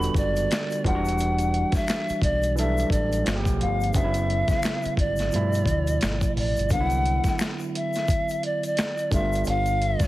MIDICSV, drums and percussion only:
0, 0, Header, 1, 2, 480
1, 0, Start_track
1, 0, Tempo, 689655
1, 825, Time_signature, 4, 2, 24, 8
1, 7012, End_track
2, 0, Start_track
2, 0, Title_t, "Drums"
2, 15, Note_on_c, 9, 82, 46
2, 26, Note_on_c, 9, 42, 44
2, 85, Note_off_c, 9, 82, 0
2, 96, Note_off_c, 9, 42, 0
2, 101, Note_on_c, 9, 36, 78
2, 112, Note_on_c, 9, 82, 42
2, 114, Note_on_c, 9, 42, 53
2, 170, Note_off_c, 9, 36, 0
2, 182, Note_off_c, 9, 82, 0
2, 183, Note_off_c, 9, 42, 0
2, 252, Note_on_c, 9, 82, 48
2, 255, Note_on_c, 9, 42, 43
2, 322, Note_off_c, 9, 82, 0
2, 324, Note_off_c, 9, 42, 0
2, 353, Note_on_c, 9, 42, 65
2, 359, Note_on_c, 9, 26, 58
2, 359, Note_on_c, 9, 82, 56
2, 365, Note_on_c, 9, 38, 108
2, 372, Note_off_c, 9, 26, 0
2, 372, Note_on_c, 9, 26, 86
2, 423, Note_off_c, 9, 42, 0
2, 429, Note_off_c, 9, 82, 0
2, 435, Note_off_c, 9, 38, 0
2, 442, Note_off_c, 9, 26, 0
2, 492, Note_on_c, 9, 82, 49
2, 502, Note_on_c, 9, 42, 42
2, 562, Note_off_c, 9, 82, 0
2, 572, Note_off_c, 9, 42, 0
2, 588, Note_on_c, 9, 36, 93
2, 599, Note_on_c, 9, 42, 63
2, 658, Note_off_c, 9, 36, 0
2, 669, Note_off_c, 9, 42, 0
2, 733, Note_on_c, 9, 82, 46
2, 755, Note_on_c, 9, 42, 46
2, 802, Note_off_c, 9, 82, 0
2, 824, Note_on_c, 9, 82, 65
2, 825, Note_off_c, 9, 42, 0
2, 838, Note_on_c, 9, 42, 82
2, 893, Note_off_c, 9, 82, 0
2, 908, Note_off_c, 9, 42, 0
2, 964, Note_on_c, 9, 42, 48
2, 971, Note_on_c, 9, 82, 43
2, 1033, Note_off_c, 9, 42, 0
2, 1041, Note_off_c, 9, 82, 0
2, 1071, Note_on_c, 9, 42, 53
2, 1141, Note_off_c, 9, 42, 0
2, 1197, Note_on_c, 9, 42, 40
2, 1200, Note_on_c, 9, 36, 75
2, 1211, Note_on_c, 9, 82, 39
2, 1216, Note_on_c, 9, 38, 35
2, 1267, Note_off_c, 9, 42, 0
2, 1270, Note_off_c, 9, 36, 0
2, 1281, Note_off_c, 9, 82, 0
2, 1285, Note_off_c, 9, 38, 0
2, 1309, Note_on_c, 9, 26, 74
2, 1309, Note_on_c, 9, 82, 74
2, 1321, Note_on_c, 9, 38, 102
2, 1321, Note_on_c, 9, 42, 55
2, 1329, Note_off_c, 9, 26, 0
2, 1329, Note_on_c, 9, 26, 90
2, 1379, Note_off_c, 9, 82, 0
2, 1391, Note_off_c, 9, 38, 0
2, 1391, Note_off_c, 9, 42, 0
2, 1398, Note_off_c, 9, 26, 0
2, 1452, Note_on_c, 9, 82, 42
2, 1461, Note_on_c, 9, 42, 36
2, 1522, Note_off_c, 9, 82, 0
2, 1531, Note_off_c, 9, 42, 0
2, 1542, Note_on_c, 9, 36, 82
2, 1554, Note_on_c, 9, 42, 76
2, 1612, Note_off_c, 9, 36, 0
2, 1624, Note_off_c, 9, 42, 0
2, 1687, Note_on_c, 9, 82, 48
2, 1695, Note_on_c, 9, 42, 50
2, 1757, Note_off_c, 9, 82, 0
2, 1765, Note_off_c, 9, 42, 0
2, 1791, Note_on_c, 9, 82, 60
2, 1799, Note_on_c, 9, 42, 79
2, 1860, Note_off_c, 9, 82, 0
2, 1869, Note_off_c, 9, 42, 0
2, 1932, Note_on_c, 9, 82, 48
2, 1946, Note_on_c, 9, 42, 40
2, 2001, Note_off_c, 9, 82, 0
2, 2016, Note_off_c, 9, 42, 0
2, 2018, Note_on_c, 9, 36, 74
2, 2034, Note_on_c, 9, 42, 56
2, 2034, Note_on_c, 9, 82, 44
2, 2088, Note_off_c, 9, 36, 0
2, 2103, Note_off_c, 9, 82, 0
2, 2104, Note_off_c, 9, 42, 0
2, 2174, Note_on_c, 9, 82, 48
2, 2175, Note_on_c, 9, 42, 45
2, 2244, Note_off_c, 9, 82, 0
2, 2245, Note_off_c, 9, 42, 0
2, 2269, Note_on_c, 9, 42, 71
2, 2275, Note_on_c, 9, 26, 55
2, 2275, Note_on_c, 9, 82, 60
2, 2281, Note_on_c, 9, 38, 115
2, 2288, Note_off_c, 9, 26, 0
2, 2288, Note_on_c, 9, 26, 86
2, 2338, Note_off_c, 9, 42, 0
2, 2345, Note_off_c, 9, 82, 0
2, 2351, Note_off_c, 9, 38, 0
2, 2358, Note_off_c, 9, 26, 0
2, 2404, Note_on_c, 9, 36, 83
2, 2409, Note_on_c, 9, 82, 46
2, 2417, Note_on_c, 9, 42, 39
2, 2473, Note_off_c, 9, 36, 0
2, 2478, Note_off_c, 9, 82, 0
2, 2486, Note_off_c, 9, 42, 0
2, 2512, Note_on_c, 9, 42, 66
2, 2582, Note_off_c, 9, 42, 0
2, 2649, Note_on_c, 9, 82, 45
2, 2669, Note_on_c, 9, 42, 42
2, 2719, Note_off_c, 9, 82, 0
2, 2738, Note_on_c, 9, 82, 59
2, 2739, Note_off_c, 9, 42, 0
2, 2745, Note_on_c, 9, 36, 106
2, 2753, Note_on_c, 9, 42, 84
2, 2808, Note_off_c, 9, 82, 0
2, 2815, Note_off_c, 9, 36, 0
2, 2822, Note_off_c, 9, 42, 0
2, 2882, Note_on_c, 9, 42, 50
2, 2882, Note_on_c, 9, 82, 40
2, 2951, Note_off_c, 9, 42, 0
2, 2952, Note_off_c, 9, 82, 0
2, 2992, Note_on_c, 9, 42, 51
2, 3062, Note_off_c, 9, 42, 0
2, 3116, Note_on_c, 9, 42, 41
2, 3118, Note_on_c, 9, 36, 83
2, 3123, Note_on_c, 9, 82, 43
2, 3134, Note_on_c, 9, 38, 34
2, 3186, Note_off_c, 9, 42, 0
2, 3188, Note_off_c, 9, 36, 0
2, 3192, Note_off_c, 9, 82, 0
2, 3204, Note_off_c, 9, 38, 0
2, 3223, Note_on_c, 9, 26, 73
2, 3223, Note_on_c, 9, 82, 75
2, 3237, Note_on_c, 9, 38, 103
2, 3237, Note_on_c, 9, 42, 60
2, 3245, Note_off_c, 9, 26, 0
2, 3245, Note_on_c, 9, 26, 90
2, 3292, Note_off_c, 9, 82, 0
2, 3307, Note_off_c, 9, 38, 0
2, 3307, Note_off_c, 9, 42, 0
2, 3314, Note_off_c, 9, 26, 0
2, 3359, Note_on_c, 9, 82, 42
2, 3379, Note_on_c, 9, 42, 39
2, 3429, Note_off_c, 9, 82, 0
2, 3448, Note_off_c, 9, 42, 0
2, 3461, Note_on_c, 9, 36, 81
2, 3472, Note_on_c, 9, 42, 65
2, 3531, Note_off_c, 9, 36, 0
2, 3541, Note_off_c, 9, 42, 0
2, 3594, Note_on_c, 9, 82, 48
2, 3613, Note_on_c, 9, 42, 51
2, 3619, Note_on_c, 9, 38, 35
2, 3664, Note_off_c, 9, 82, 0
2, 3682, Note_off_c, 9, 42, 0
2, 3689, Note_off_c, 9, 38, 0
2, 3699, Note_on_c, 9, 82, 56
2, 3715, Note_on_c, 9, 42, 75
2, 3768, Note_off_c, 9, 82, 0
2, 3785, Note_off_c, 9, 42, 0
2, 3847, Note_on_c, 9, 82, 46
2, 3863, Note_on_c, 9, 42, 41
2, 3917, Note_off_c, 9, 82, 0
2, 3933, Note_off_c, 9, 42, 0
2, 3937, Note_on_c, 9, 36, 73
2, 3949, Note_on_c, 9, 42, 55
2, 3949, Note_on_c, 9, 82, 44
2, 4006, Note_off_c, 9, 36, 0
2, 4018, Note_off_c, 9, 82, 0
2, 4019, Note_off_c, 9, 42, 0
2, 4088, Note_on_c, 9, 42, 45
2, 4088, Note_on_c, 9, 82, 49
2, 4158, Note_off_c, 9, 42, 0
2, 4158, Note_off_c, 9, 82, 0
2, 4183, Note_on_c, 9, 42, 65
2, 4194, Note_on_c, 9, 26, 57
2, 4194, Note_on_c, 9, 82, 60
2, 4195, Note_on_c, 9, 38, 110
2, 4202, Note_off_c, 9, 26, 0
2, 4202, Note_on_c, 9, 26, 88
2, 4252, Note_off_c, 9, 42, 0
2, 4263, Note_off_c, 9, 82, 0
2, 4264, Note_off_c, 9, 38, 0
2, 4272, Note_off_c, 9, 26, 0
2, 4324, Note_on_c, 9, 36, 86
2, 4325, Note_on_c, 9, 82, 47
2, 4335, Note_on_c, 9, 42, 39
2, 4394, Note_off_c, 9, 36, 0
2, 4395, Note_off_c, 9, 82, 0
2, 4404, Note_off_c, 9, 42, 0
2, 4434, Note_on_c, 9, 46, 43
2, 4504, Note_off_c, 9, 46, 0
2, 4570, Note_on_c, 9, 82, 43
2, 4588, Note_on_c, 9, 42, 47
2, 4640, Note_off_c, 9, 82, 0
2, 4658, Note_off_c, 9, 42, 0
2, 4659, Note_on_c, 9, 82, 59
2, 4666, Note_on_c, 9, 36, 102
2, 4671, Note_on_c, 9, 42, 78
2, 4729, Note_off_c, 9, 82, 0
2, 4736, Note_off_c, 9, 36, 0
2, 4741, Note_off_c, 9, 42, 0
2, 4801, Note_on_c, 9, 42, 30
2, 4807, Note_on_c, 9, 82, 41
2, 4871, Note_off_c, 9, 42, 0
2, 4877, Note_off_c, 9, 82, 0
2, 4910, Note_on_c, 9, 42, 53
2, 4980, Note_off_c, 9, 42, 0
2, 5037, Note_on_c, 9, 42, 38
2, 5040, Note_on_c, 9, 36, 78
2, 5043, Note_on_c, 9, 82, 40
2, 5055, Note_on_c, 9, 38, 34
2, 5106, Note_off_c, 9, 42, 0
2, 5110, Note_off_c, 9, 36, 0
2, 5113, Note_off_c, 9, 82, 0
2, 5125, Note_off_c, 9, 38, 0
2, 5145, Note_on_c, 9, 26, 72
2, 5145, Note_on_c, 9, 82, 72
2, 5158, Note_on_c, 9, 38, 107
2, 5158, Note_on_c, 9, 42, 60
2, 5166, Note_off_c, 9, 26, 0
2, 5166, Note_on_c, 9, 26, 94
2, 5214, Note_off_c, 9, 82, 0
2, 5228, Note_off_c, 9, 38, 0
2, 5228, Note_off_c, 9, 42, 0
2, 5235, Note_off_c, 9, 26, 0
2, 5284, Note_on_c, 9, 82, 38
2, 5354, Note_off_c, 9, 82, 0
2, 5397, Note_on_c, 9, 42, 67
2, 5466, Note_off_c, 9, 42, 0
2, 5522, Note_on_c, 9, 82, 49
2, 5537, Note_on_c, 9, 42, 53
2, 5544, Note_on_c, 9, 38, 34
2, 5591, Note_off_c, 9, 82, 0
2, 5607, Note_off_c, 9, 42, 0
2, 5613, Note_off_c, 9, 38, 0
2, 5624, Note_on_c, 9, 82, 59
2, 5626, Note_on_c, 9, 36, 84
2, 5638, Note_on_c, 9, 42, 71
2, 5694, Note_off_c, 9, 82, 0
2, 5696, Note_off_c, 9, 36, 0
2, 5707, Note_off_c, 9, 42, 0
2, 5767, Note_on_c, 9, 82, 46
2, 5783, Note_on_c, 9, 42, 30
2, 5837, Note_off_c, 9, 82, 0
2, 5853, Note_off_c, 9, 42, 0
2, 5869, Note_on_c, 9, 42, 58
2, 5939, Note_off_c, 9, 42, 0
2, 6009, Note_on_c, 9, 42, 47
2, 6012, Note_on_c, 9, 82, 44
2, 6079, Note_off_c, 9, 42, 0
2, 6081, Note_off_c, 9, 82, 0
2, 6104, Note_on_c, 9, 42, 75
2, 6115, Note_on_c, 9, 26, 60
2, 6115, Note_on_c, 9, 82, 58
2, 6116, Note_on_c, 9, 38, 105
2, 6124, Note_off_c, 9, 26, 0
2, 6124, Note_on_c, 9, 26, 86
2, 6174, Note_off_c, 9, 42, 0
2, 6184, Note_off_c, 9, 82, 0
2, 6186, Note_off_c, 9, 38, 0
2, 6193, Note_off_c, 9, 26, 0
2, 6249, Note_on_c, 9, 82, 46
2, 6257, Note_on_c, 9, 42, 30
2, 6319, Note_off_c, 9, 82, 0
2, 6327, Note_off_c, 9, 42, 0
2, 6344, Note_on_c, 9, 36, 98
2, 6346, Note_on_c, 9, 82, 42
2, 6351, Note_on_c, 9, 42, 66
2, 6414, Note_off_c, 9, 36, 0
2, 6416, Note_off_c, 9, 82, 0
2, 6421, Note_off_c, 9, 42, 0
2, 6491, Note_on_c, 9, 82, 43
2, 6510, Note_on_c, 9, 42, 47
2, 6561, Note_off_c, 9, 82, 0
2, 6575, Note_on_c, 9, 82, 59
2, 6580, Note_off_c, 9, 42, 0
2, 6592, Note_on_c, 9, 42, 75
2, 6644, Note_off_c, 9, 82, 0
2, 6662, Note_off_c, 9, 42, 0
2, 6722, Note_on_c, 9, 42, 31
2, 6723, Note_on_c, 9, 82, 41
2, 6791, Note_off_c, 9, 42, 0
2, 6793, Note_off_c, 9, 82, 0
2, 6832, Note_on_c, 9, 42, 51
2, 6902, Note_off_c, 9, 42, 0
2, 6956, Note_on_c, 9, 42, 41
2, 6959, Note_on_c, 9, 36, 77
2, 6963, Note_on_c, 9, 82, 43
2, 6974, Note_on_c, 9, 38, 35
2, 7012, Note_off_c, 9, 36, 0
2, 7012, Note_off_c, 9, 38, 0
2, 7012, Note_off_c, 9, 42, 0
2, 7012, Note_off_c, 9, 82, 0
2, 7012, End_track
0, 0, End_of_file